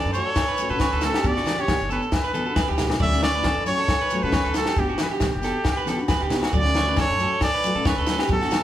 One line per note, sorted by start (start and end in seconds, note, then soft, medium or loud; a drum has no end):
0.00 0.13 A4 medium
0.00 0.12 D5 loud
0.05 0.21 F#2 medium
0.13 0.28 A3 medium
0.13 0.29 C#4 medium
0.13 0.71 C#5 loud
0.13 0.26 C#5 medium
0.13 shekere medium
0.17 0.30 F#4 medium
0.26 0.47 A4 medium
0.35 kick medium
0.35 snare medium
0.35 muted conga soft
0.35 low agogo medium
0.35 shekere loud
0.47 0.69 B4 medium
0.47 shekere soft
0.57 0.70 A3 medium
0.57 0.71 C#4 medium
0.57 muted conga soft
0.57 shekere medium
0.62 0.68 F#4 medium
0.69 0.78 B2 medium
0.69 0.82 F#4 medium
0.69 0.80 A4 medium
0.69 1.06 B4 loud
0.69 shekere soft
0.73 0.84 C#4 soft
0.79 0.92 C#5 medium
0.79 kick medium
0.79 snare medium
0.79 high conga medium
0.79 low agogo medium
0.79 shekere loud
0.91 1.09 D2 medium
0.91 1.14 A4 medium
0.91 shekere soft
1.01 1.16 A3 medium
1.01 1.17 C#4 medium
1.01 1.28 A4 loud
1.01 snare medium
1.01 muted conga soft
1.01 shekere medium
1.06 1.18 F#4 medium
1.14 1.36 G4 medium
1.14 snare medium
1.14 low agogo medium
1.23 1.41 G1 medium
1.23 1.36 B3 medium
1.23 1.36 D4 medium
1.23 1.33 F#4 medium
1.23 1.62 D5 loud
1.23 kick loud
1.23 shekere loud
1.35 1.48 F#4 medium
1.35 1.57 F#4 medium
1.35 snare soft
1.35 shekere soft
1.46 snare medium
1.46 high conga medium
1.46 low agogo medium
1.46 shekere medium
1.57 1.72 D4 soft
1.57 1.71 F#4 soft
1.57 1.79 G4 medium
1.57 1.92 C#5 loud
1.57 shekere soft
1.68 kick medium
1.68 snare medium
1.68 high conga medium
1.68 low conga medium
1.68 low agogo medium
1.68 shekere loud
1.80 1.98 F#1 medium
1.80 shekere soft
1.89 2.04 B3 medium
1.89 2.05 D4 medium
1.89 2.11 A4 medium
1.89 2.02 B4 medium
1.89 shekere medium
2.02 shekere soft
2.12 2.76 B4 medium
2.12 kick loud
2.12 snare medium
2.12 muted conga soft
2.12 low agogo medium
2.12 shekere medium
2.24 2.34 B4 medium
2.24 shekere soft
2.33 2.46 B3 medium
2.33 2.47 D4 medium
2.33 2.44 F#4 medium
2.33 2.45 A4 medium
2.33 muted conga soft
2.33 high conga medium
2.33 shekere medium
2.45 2.59 F#4 medium
2.45 2.56 A4 medium
2.50 2.61 D4 soft
2.56 2.67 B4 medium
2.56 kick loud
2.56 snare medium
2.56 high conga medium
2.56 low agogo medium
2.56 shekere medium
2.68 2.77 D2 medium
2.68 2.89 G4 medium
2.68 high conga medium
2.68 shekere soft
2.78 2.89 C#2 medium
2.78 2.93 B3 medium
2.78 2.93 D4 medium
2.78 snare medium
2.78 low conga medium
2.78 shekere medium
2.82 2.94 F#4 medium
2.90 muted clean electric guitar stroke medium
2.90 snare medium
2.90 low conga medium
2.90 low agogo medium
2.90 shekere soft
2.99 3.43 D2 loud
2.99 3.12 F#3 medium
2.99 3.12 A3 medium
2.99 3.11 C#4 medium
2.99 3.09 F#4 medium
2.99 3.22 D5 loud
2.99 3.22 E5 loud
2.99 kick loud
2.99 muted conga soft
2.99 shekere medium
3.11 3.26 A3 soft
3.11 3.25 C#4 medium
3.11 3.24 F#4 medium
3.11 snare soft
3.11 shekere soft
3.21 3.34 C#5 medium
3.21 3.64 D5 loud
3.21 snare medium
3.21 high conga medium
3.21 low agogo medium
3.21 shekere medium
3.33 3.48 C#4 soft
3.33 3.47 F#4 soft
3.33 3.45 B4 medium
3.37 3.49 A3 soft
3.43 3.67 A4 medium
3.43 kick medium
3.43 snare medium
3.43 high conga loud
3.43 low agogo medium
3.43 shekere medium
3.57 3.74 F#2 medium
3.65 3.80 F#3 medium
3.65 3.80 A3 medium
3.65 3.81 C#4 medium
3.65 3.81 F#4 medium
3.65 4.24 C#5 loud
3.65 3.79 C#5 medium
3.65 shekere medium
3.79 4.00 A4 medium
3.88 kick medium
3.88 snare medium
3.88 muted conga soft
3.88 low agogo medium
3.88 shekere medium
4.00 4.22 B4 medium
4.00 shekere soft
4.10 4.23 F#3 medium
4.10 4.23 A3 medium
4.10 muted conga soft
4.10 shekere medium
4.15 4.23 C#4 medium
4.15 4.22 F#4 medium
4.22 4.31 B2 medium
4.22 4.36 C#4 soft
4.22 4.36 F#4 medium
4.22 4.34 A4 medium
4.22 4.55 B4 loud
4.22 shekere soft
4.26 4.37 A3 soft
4.32 4.44 C#5 medium
4.32 kick loud
4.32 snare medium
4.32 high conga medium
4.32 low agogo medium
4.32 shekere medium
4.44 4.62 D2 medium
4.44 4.66 A4 medium
4.44 shekere soft
4.54 4.68 F#3 medium
4.54 4.70 A3 medium
4.54 4.81 A4 loud
4.54 snare medium
4.54 muted conga soft
4.54 shekere medium
4.59 4.71 F#4 medium
4.66 4.88 G4 medium
4.66 snare medium
4.66 low agogo medium
4.77 4.94 G1 medium
4.77 4.89 B3 medium
4.77 4.89 D4 medium
4.77 4.88 F#4 medium
4.77 5.00 G4 medium
4.77 kick loud
4.77 muted conga soft
4.77 shekere medium
4.89 5.02 F#4 medium
4.89 5.10 F#4 medium
4.89 shekere soft
4.93 5.04 D4 soft
4.98 snare medium
4.98 high conga medium
4.98 low agogo medium
4.98 shekere medium
5.02 5.07 B4 medium
5.10 5.23 F#4 soft
5.10 5.32 G4 medium
5.14 5.25 D4 soft
5.14 6.29 G4 medium
5.20 kick medium
5.20 snare medium
5.20 high conga loud
5.20 low conga medium
5.20 low agogo medium
5.20 shekere loud
5.34 5.51 F#1 medium
5.41 5.56 B3 medium
5.41 5.57 D4 medium
5.41 5.65 A4 medium
5.41 snare soft
5.41 shekere medium
5.45 5.58 F#4 medium
5.64 kick loud
5.64 snare medium
5.64 muted conga soft
5.64 low agogo medium
5.64 shekere medium
5.76 5.87 B4 medium
5.76 shekere soft
5.86 5.98 B3 medium
5.86 5.95 F#4 medium
5.86 5.99 A4 medium
5.86 muted steel-string acoustic guitar stroke medium
5.86 snare soft
5.86 muted conga soft
5.86 high conga medium
5.86 shekere medium
5.97 6.13 D4 medium
5.97 6.11 F#4 medium
5.97 shekere soft
6.08 6.21 B4 loud
6.08 kick loud
6.08 snare medium
6.08 high conga medium
6.08 low agogo medium
6.08 shekere medium
6.20 6.29 D2 medium
6.20 6.42 G4 medium
6.20 shekere soft
6.30 6.41 C#2 loud
6.30 6.44 B3 medium
6.30 6.45 D4 medium
6.30 6.46 F#4 medium
6.30 snare medium
6.30 muted conga soft
6.30 low conga medium
6.30 shekere medium
6.42 6.53 F#4 medium
6.42 snare medium
6.42 low agogo medium
6.51 6.96 D2 loud
6.51 6.64 F#3 medium
6.51 6.65 A3 medium
6.51 6.63 C#4 medium
6.51 6.62 F#4 medium
6.51 6.75 D5 loud
6.51 kick medium
6.51 muted conga soft
6.51 shekere medium
6.56 6.96 D5 loud
6.63 6.79 A3 soft
6.63 6.78 C#4 medium
6.63 6.77 F#4 medium
6.63 snare soft
6.63 shekere soft
6.74 6.88 C#5 medium
6.74 snare medium
6.74 high conga medium
6.74 low agogo medium
6.74 shekere medium
6.85 7.01 A3 soft
6.85 7.00 C#4 soft
6.85 6.99 F#4 soft
6.85 6.98 B4 medium
6.96 7.19 A4 medium
6.96 kick medium
6.96 snare medium
6.96 high conga medium
6.96 low agogo medium
6.96 shekere loud
7.01 7.40 C#5 loud
7.10 7.26 F#2 medium
7.17 7.32 F#3 medium
7.17 7.33 A3 medium
7.17 7.34 C#4 medium
7.17 shekere medium
7.21 7.34 F#4 medium
7.21 7.31 A4 medium
7.33 7.53 A4 medium
7.41 7.84 D5 loud
7.41 kick loud
7.41 snare medium
7.41 muted conga soft
7.41 low agogo medium
7.41 shekere medium
7.52 7.75 B4 medium
7.52 shekere soft
7.63 7.75 F#3 medium
7.63 7.76 A3 medium
7.63 7.73 F#4 medium
7.63 muted conga soft
7.63 shekere medium
7.74 7.83 B2 medium
7.74 7.89 C#4 soft
7.74 7.88 F#4 medium
7.74 7.86 A4 medium
7.74 shekere soft
7.78 7.90 A3 soft
7.85 8.29 B4 medium
7.85 7.97 C#5 medium
7.85 kick loud
7.85 snare medium
7.85 high conga medium
7.85 low agogo medium
7.85 shekere loud
7.96 8.14 D2 medium
7.96 8.19 A4 medium
7.96 shekere soft
8.06 8.21 F#3 medium
8.06 8.22 A3 medium
8.06 8.22 C#4 medium
8.06 8.23 F#4 medium
8.06 snare medium
8.06 muted conga soft
8.06 shekere medium
8.19 8.41 G4 medium
8.19 snare medium
8.19 low agogo medium
8.28 8.47 G1 loud
8.28 8.41 F#3 medium
8.28 8.42 B3 medium
8.28 8.42 D4 medium
8.28 8.40 F#4 medium
8.28 kick loud
8.28 shekere loud
8.32 8.63 A4 loud
8.40 8.56 B3 soft
8.40 8.55 D4 medium
8.40 8.54 F#4 medium
8.40 8.63 F#4 medium
8.40 snare soft
8.40 shekere soft
8.51 snare medium
8.51 high conga medium
8.51 low agogo medium
8.51 shekere medium